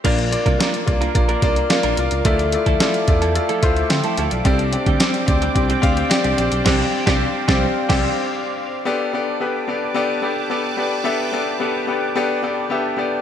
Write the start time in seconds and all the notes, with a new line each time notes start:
0.04 A#1 A#3 D4 F4 A#4 D5 F5 D6, kick, closed hi-hat, crash
0.18 muted clean electric guitar stroke, closed hi-hat
0.31 A#3 D4 F4 D5, muted clean electric guitar stroke, closed hi-hat
0.46 C2 A#3 D4 F4 A#4, kick, closed hi-hat
0.58 A#3 D4 F4 A#4 D5, snare, closed hi-hat
0.73 muted clean electric guitar stroke, closed hi-hat
0.86 C2 A#3 D4 F4 D5, muted clean electric guitar stroke, kick, closed hi-hat
1.01 A#3 D4 F4 A#4, closed hi-hat
1.15 A#1 A#3 D4 F4 D5, muted clean electric guitar stroke, kick, closed hi-hat
1.29 A#3 D4 F4 A#4, closed hi-hat
1.42 C2 A#3 D4 F4 D5, muted clean electric guitar stroke, kick, closed hi-hat
1.56 muted clean electric guitar stroke, closed hi-hat
1.70 A#3 D4 F4 D5, muted clean electric guitar stroke, snare, closed hi-hat
1.83 A#1 A#3 D4 F4 A#4, closed hi-hat
1.97 C2 A#3 D4 F4 D5, muted clean electric guitar stroke, closed hi-hat
2.11 C#2, muted clean electric guitar stroke, closed hi-hat
2.25 D2 F3 A3 E4 F4 A4 D5 E5, kick, closed hi-hat
2.39 muted clean electric guitar stroke, closed hi-hat
2.52 A3 E4 F4 D5, muted clean electric guitar stroke, closed hi-hat
2.66 D2 F3 A3 E4 A4, kick, closed hi-hat
2.80 F3 A3 E4 F4 A4 D5, snare, closed hi-hat
2.94 muted clean electric guitar stroke, closed hi-hat
3.08 E2 A3 E4 F4 D5, muted clean electric guitar stroke, kick, closed hi-hat
3.22 F3 A3 E4 A4, closed hi-hat
3.35 A3 E4 F4 D5, muted clean electric guitar stroke, closed hi-hat
3.49 F3 A3 E4 A4, closed hi-hat
3.62 D2 A3 E4 F4 C5, muted clean electric guitar stroke, kick, closed hi-hat
3.77 muted clean electric guitar stroke, closed hi-hat
3.90 D3 G5 C6, muted clean electric guitar stroke, snare, closed hi-hat
4.04 F3 A3 E4 A4 A5, closed hi-hat
4.17 D2 F3 A3 E4 A4 F5 A5, closed hi-hat
4.31 B1 D5, muted clean electric guitar stroke, closed hi-hat
4.45 C2 G3 C4 D4 G4 C5 D5 G5, kick, closed hi-hat
4.59 muted clean electric guitar stroke, closed hi-hat
4.72 C4 D4 G4 D5, muted clean electric guitar stroke, closed hi-hat
4.86 D2 G3 C4 D4 G4, kick, closed hi-hat
5.00 G3 C4 D4 G4 D5, snare, closed hi-hat, tambourine
5.14 muted clean electric guitar stroke, closed hi-hat
5.26 D2 C4 D4 G4 D5, muted clean electric guitar stroke, kick, closed hi-hat
5.42 G3 C4 D4 G4, closed hi-hat
5.55 C2 C4 D4 G4 D5, muted clean electric guitar stroke, kick, closed hi-hat
5.69 G3 C4 D4 G4, closed hi-hat
5.82 D2 C4 D4 G4 F5, kick, closed hi-hat
5.97 muted clean electric guitar stroke, closed hi-hat
6.10 C4 D4 G4 D5, muted clean electric guitar stroke, snare, closed hi-hat, tambourine
6.24 C2 G3 C4 D4 G4, closed hi-hat
6.38 A#1 C4 D4 G4 D5, muted clean electric guitar stroke, closed hi-hat
6.52 B1, muted clean electric guitar stroke, closed hi-hat
6.65 C2 G3 C4 D4 G4 D5 F5, kick, snare, crash
7.06 C2 G3 C4 D4 G4 D5, kick, snare
7.48 C2 G3 C4 D4 G4 D5, kick, snare
7.89 C2 G3 C4 D4 G4, kick, snare, crash
8.85 B3 D4 G4 A4 B4 D5 G5 A5 D6
9.13 B3 D4 G4 A4 D5
9.40 B3 D4 G4 A4 B4
9.68 B3 D4 G4 A4 D5
9.94 B3 D4 G4 A4 D5
10.22 B3 D4 G4 A4 D5
10.50 B3 D4 G4 A4 D5
10.77 B3 D4 G4 A4 D5
11.04 B3 D4 G4 A4 E5
11.32 B3 D4 G4 A4 D5
11.60 B3 D4 G4 A4 B4
11.87 B3 D4 G4 A4 B4
12.16 B3 D4 G4 A4 D5
12.43 B3 D4 G4 A4 D5
12.70 B3 D4 G4 A4 E5
12.97 B3 D4 G4 A4 D5